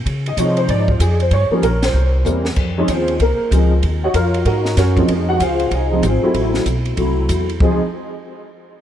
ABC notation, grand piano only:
X:1
M:4/4
L:1/8
Q:"Swing" 1/4=191
K:Db
V:1 name="Grand piano"
z e d c =d F A c | d F B c3 z2 | z [Dd] [CFAc]2 [B,B]2 [FA]2 | z [Gdeg] [FBdf]2 [EGBe]2 [DGBd]2 |
z [Gg] [FAcf]2 [EAce]2 [CFAc]2 | z8 | A z6 z |]
V:2 name="Grand piano"
z2 [F,A,CE]3 z3 | z [F,=G,B,D] z4 [=E,G,B,C] z | z [F,A,CE] z4 [F,A,CE] z | z6 z [F,A,CE]- |
[F,A,CE]2 z3 [F,A,CE] z [G,=A,C_F]- | [G,=A,C_F]2 z2 [^F,A,C=E]3 z | [F,A,CE] z6 z |]